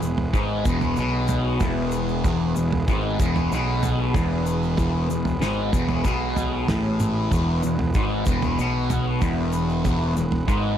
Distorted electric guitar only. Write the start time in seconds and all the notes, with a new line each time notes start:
0.02 E2
0.33 G#2
0.66 E2
0.98 B2
1.61 E2
2.25 E2
2.57 E2
2.89 G#2
3.20 E2
3.52 B2
4.15 E2
4.78 E2
5.09 E2
5.41 G#2
5.73 E2
6.04 B2
6.69 A2
7.33 E2
7.64 E2
7.95 G#2
8.27 E2
8.59 B2
9.22 E2
9.85 E2
10.16 E2
10.47 G#2